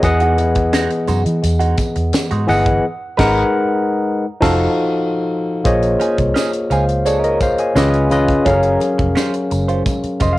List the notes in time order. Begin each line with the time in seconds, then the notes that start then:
0.03 E2 E3 B3 G#4 D#5 F#5, kick, closed hi-hat, tambourine
0.20 G#3 D#4 F#4, closed hi-hat
0.38 muted clean electric guitar stroke, closed hi-hat, muted conga
0.55 muted clean electric guitar stroke, kick, closed hi-hat
0.73 G#3 D#4 F#4, snare, closed hi-hat, tambourine, high conga
0.90 closed hi-hat
1.07 F#2 G#3 D#4 F#4, closed hi-hat, tambourine, low conga
1.25 E3, muted clean electric guitar stroke, closed hi-hat
1.42 E2, muted clean electric guitar stroke, closed hi-hat, tambourine
1.59 G#3 D#4 F#4, closed hi-hat
1.77 kick, closed hi-hat, tambourine, muted conga
1.95 E2, muted clean electric guitar stroke, closed hi-hat
2.13 muted clean electric guitar stroke, snare, closed hi-hat, tambourine, high conga
2.31 G#2 G#3 D#4 F#4, closed hi-hat
2.47 G1 E3 B3 G#4 D#5 F#5, muted clean electric guitar stroke, open hi-hat, tambourine, high conga
2.66 muted clean electric guitar stroke, kick, closed hi-hat
3.17 G#1 G#3 B3 D#4 F#4 A#4 B4 F#5, kick, snare, crash
4.41 F1 F3 D#4 F#4 A4 F5, kick, snare, crash
5.64 A#1 A#3 F4 G#4 C5 C#5 D#5, kick, closed hi-hat
5.82 closed hi-hat
6.00 C#4 D#4 G#4, closed hi-hat, muted conga
6.18 C2, kick, closed hi-hat
6.34 C#4 D#4 G#4, snare, tambourine, high conga
6.52 muted clean electric guitar stroke, closed hi-hat
6.70 C#2 C#4 D#4 G#4 C5 F5, closed hi-hat, tambourine
6.89 muted clean electric guitar stroke, closed hi-hat
7.05 C4 D4 G#4 A4 C#5, closed hi-hat, tambourine
7.18 C#4 D#4 A#4
7.24 A#4 D#5, closed hi-hat
7.40 C5 F5, muted clean electric guitar stroke, kick, closed hi-hat, tambourine, muted conga
7.58 D#5 G#5, muted clean electric guitar stroke, closed hi-hat
7.75 C#2 C#3 A#3 C#4 E4 F4 G4 B4 D#5, snare, tambourine, high conga
7.89 B3 F4 G#4
7.93 closed hi-hat
8.10 C#3 C#4 F4 B4 D#5, closed hi-hat, tambourine, high conga
8.28 muted clean electric guitar stroke, kick, closed hi-hat
8.45 F#1 F#3 C#4 F4 G#4 A4 A#4 F5, kick, closed hi-hat, tambourine, muted conga
8.53 A#4
8.63 closed hi-hat
8.80 closed hi-hat, muted conga
8.98 F1, muted clean electric guitar stroke, kick, closed hi-hat
9.15 C#4 F4 C5, snare, tambourine, high conga
9.34 closed hi-hat
9.50 F#1, muted clean electric guitar stroke, closed hi-hat, tambourine
9.68 C#4 F4 C5, closed hi-hat
9.86 muted clean electric guitar stroke, kick, closed hi-hat, tambourine, low conga
10.03 muted fingered electric bass stroke, closed hi-hat
10.20 F1 C#4 F4 C5 D#5, kick, closed hi-hat, tambourine, muted conga
10.33 F5